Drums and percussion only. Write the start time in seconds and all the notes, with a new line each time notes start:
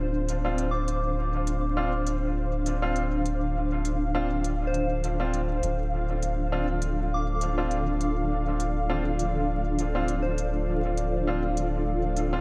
0.29 closed hi-hat
0.58 closed hi-hat
0.88 closed hi-hat
1.47 closed hi-hat
2.07 closed hi-hat
2.66 closed hi-hat
2.96 closed hi-hat
3.26 closed hi-hat
3.85 closed hi-hat
4.44 closed hi-hat
4.74 closed hi-hat
5.04 closed hi-hat
5.34 closed hi-hat
5.63 closed hi-hat
6.22 closed hi-hat
6.82 closed hi-hat
7.41 closed hi-hat
7.71 closed hi-hat
8.01 closed hi-hat
8.60 closed hi-hat
9.19 closed hi-hat
9.79 closed hi-hat
10.08 closed hi-hat
10.38 closed hi-hat
10.98 closed hi-hat
11.57 closed hi-hat
12.17 closed hi-hat